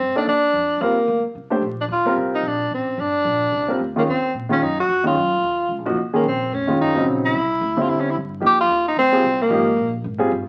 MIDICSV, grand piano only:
0, 0, Header, 1, 2, 480
1, 0, Start_track
1, 0, Tempo, 271739
1, 1422, Time_signature, 4, 2, 24, 8
1, 18519, End_track
2, 0, Start_track
2, 0, Title_t, "Grand piano"
2, 0, Program_c, 0, 0
2, 273, Note_on_c, 0, 63, 59
2, 277, Note_on_c, 0, 58, 59
2, 283, Note_on_c, 0, 69, 58
2, 288, Note_on_c, 0, 74, 66
2, 447, Note_off_c, 0, 63, 0
2, 449, Note_off_c, 0, 58, 0
2, 452, Note_off_c, 0, 69, 0
2, 454, Note_off_c, 0, 74, 0
2, 1422, Note_on_c, 0, 60, 50
2, 1424, Note_on_c, 0, 55, 53
2, 1430, Note_on_c, 0, 65, 52
2, 1443, Note_on_c, 0, 70, 54
2, 1675, Note_off_c, 0, 60, 0
2, 1676, Note_off_c, 0, 55, 0
2, 1679, Note_off_c, 0, 65, 0
2, 1686, Note_off_c, 0, 70, 0
2, 2656, Note_on_c, 0, 62, 53
2, 2661, Note_on_c, 0, 57, 53
2, 2665, Note_on_c, 0, 67, 56
2, 2675, Note_on_c, 0, 72, 68
2, 2838, Note_off_c, 0, 62, 0
2, 2840, Note_off_c, 0, 57, 0
2, 2842, Note_off_c, 0, 67, 0
2, 2847, Note_off_c, 0, 72, 0
2, 3627, Note_on_c, 0, 55, 64
2, 3635, Note_on_c, 0, 60, 63
2, 3639, Note_on_c, 0, 65, 57
2, 3642, Note_on_c, 0, 70, 73
2, 4264, Note_off_c, 0, 55, 0
2, 4268, Note_off_c, 0, 60, 0
2, 4270, Note_off_c, 0, 65, 0
2, 4271, Note_off_c, 0, 70, 0
2, 6499, Note_on_c, 0, 55, 58
2, 6505, Note_on_c, 0, 60, 55
2, 6511, Note_on_c, 0, 65, 46
2, 6520, Note_on_c, 0, 70, 57
2, 6680, Note_off_c, 0, 55, 0
2, 6682, Note_off_c, 0, 60, 0
2, 6686, Note_off_c, 0, 65, 0
2, 6690, Note_off_c, 0, 70, 0
2, 6995, Note_on_c, 0, 51, 57
2, 6998, Note_on_c, 0, 65, 59
2, 7000, Note_on_c, 0, 61, 50
2, 7001, Note_on_c, 0, 56, 51
2, 7168, Note_off_c, 0, 51, 0
2, 7170, Note_off_c, 0, 61, 0
2, 7170, Note_off_c, 0, 65, 0
2, 7171, Note_off_c, 0, 56, 0
2, 7934, Note_on_c, 0, 51, 68
2, 7940, Note_on_c, 0, 56, 56
2, 7955, Note_on_c, 0, 61, 66
2, 7958, Note_on_c, 0, 65, 70
2, 8118, Note_off_c, 0, 51, 0
2, 8121, Note_off_c, 0, 56, 0
2, 8128, Note_off_c, 0, 61, 0
2, 8130, Note_off_c, 0, 65, 0
2, 8897, Note_on_c, 0, 51, 55
2, 8905, Note_on_c, 0, 61, 49
2, 8909, Note_on_c, 0, 56, 47
2, 8920, Note_on_c, 0, 63, 53
2, 9080, Note_off_c, 0, 51, 0
2, 9084, Note_off_c, 0, 61, 0
2, 9086, Note_off_c, 0, 56, 0
2, 9091, Note_off_c, 0, 63, 0
2, 10342, Note_on_c, 0, 53, 62
2, 10345, Note_on_c, 0, 58, 53
2, 10348, Note_on_c, 0, 63, 52
2, 10356, Note_on_c, 0, 66, 78
2, 10523, Note_off_c, 0, 53, 0
2, 10524, Note_off_c, 0, 58, 0
2, 10526, Note_off_c, 0, 63, 0
2, 10530, Note_off_c, 0, 66, 0
2, 10833, Note_on_c, 0, 61, 49
2, 10835, Note_on_c, 0, 51, 56
2, 10839, Note_on_c, 0, 68, 60
2, 10841, Note_on_c, 0, 56, 51
2, 11009, Note_off_c, 0, 61, 0
2, 11010, Note_off_c, 0, 51, 0
2, 11012, Note_off_c, 0, 56, 0
2, 11012, Note_off_c, 0, 68, 0
2, 11789, Note_on_c, 0, 51, 60
2, 11797, Note_on_c, 0, 56, 55
2, 11806, Note_on_c, 0, 65, 63
2, 11808, Note_on_c, 0, 61, 58
2, 12241, Note_off_c, 0, 51, 0
2, 12245, Note_off_c, 0, 56, 0
2, 12249, Note_off_c, 0, 65, 0
2, 12250, Note_off_c, 0, 61, 0
2, 12269, Note_on_c, 0, 49, 63
2, 12272, Note_on_c, 0, 54, 59
2, 12276, Note_on_c, 0, 63, 66
2, 12281, Note_on_c, 0, 60, 60
2, 12908, Note_off_c, 0, 49, 0
2, 12909, Note_off_c, 0, 54, 0
2, 12911, Note_off_c, 0, 63, 0
2, 12914, Note_off_c, 0, 60, 0
2, 13718, Note_on_c, 0, 50, 57
2, 13723, Note_on_c, 0, 55, 54
2, 13736, Note_on_c, 0, 60, 57
2, 13742, Note_on_c, 0, 64, 66
2, 14352, Note_off_c, 0, 50, 0
2, 14354, Note_off_c, 0, 55, 0
2, 14361, Note_off_c, 0, 60, 0
2, 14364, Note_off_c, 0, 64, 0
2, 14844, Note_on_c, 0, 53, 50
2, 14854, Note_on_c, 0, 58, 52
2, 14860, Note_on_c, 0, 63, 46
2, 14863, Note_on_c, 0, 67, 58
2, 15109, Note_off_c, 0, 53, 0
2, 15114, Note_off_c, 0, 58, 0
2, 15117, Note_off_c, 0, 63, 0
2, 15118, Note_off_c, 0, 67, 0
2, 16100, Note_on_c, 0, 55, 64
2, 16115, Note_on_c, 0, 65, 64
2, 16116, Note_on_c, 0, 60, 65
2, 16125, Note_on_c, 0, 68, 75
2, 16281, Note_off_c, 0, 55, 0
2, 16289, Note_off_c, 0, 60, 0
2, 16289, Note_off_c, 0, 65, 0
2, 16294, Note_off_c, 0, 68, 0
2, 16777, Note_on_c, 0, 53, 66
2, 16786, Note_on_c, 0, 58, 55
2, 16790, Note_on_c, 0, 63, 64
2, 16796, Note_on_c, 0, 67, 69
2, 17033, Note_off_c, 0, 53, 0
2, 17037, Note_off_c, 0, 58, 0
2, 17039, Note_off_c, 0, 63, 0
2, 17043, Note_off_c, 0, 67, 0
2, 17987, Note_on_c, 0, 55, 72
2, 18002, Note_on_c, 0, 60, 60
2, 18003, Note_on_c, 0, 65, 69
2, 18007, Note_on_c, 0, 68, 82
2, 18182, Note_off_c, 0, 55, 0
2, 18190, Note_off_c, 0, 60, 0
2, 18190, Note_off_c, 0, 65, 0
2, 18192, Note_off_c, 0, 68, 0
2, 18519, End_track
0, 0, End_of_file